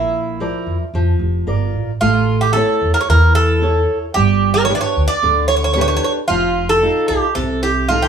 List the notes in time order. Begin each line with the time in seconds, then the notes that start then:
Already playing: A#1 A#3 E4
0.40 F3 A#4 D5
0.67 F2
0.94 F2 F3
1.20 F1
1.47 G1 F4 A#4 D5
1.74 A1
2.01 A1 A3 F4
2.41 G4
2.53 E4 A4 C#5
2.82 E2
2.94 A#4
3.01 C#5
3.09 E2 E3 A#4
3.35 A4
3.62 E4 A4 C#5
4.14 G1 G3 G4
4.54 A#4
4.65 C#5
4.69 D4 G4 B4
4.75 D5
4.81 C#5
4.96 D2
5.08 D5
5.23 D2 D3
5.48 C#5
5.56 C#5
5.64 C#5
5.73 D4 G4 C#5
5.78 B4 C#5
5.88 C#5
5.96 C#5
6.04 C#5
6.28 F1 F3 F4
6.69 A4
6.83 D#4 F4 A4
7.08 C2 G4
7.35 C2 C3 A4
7.63 G4
7.89 D#4 F4 A4
8.02 G4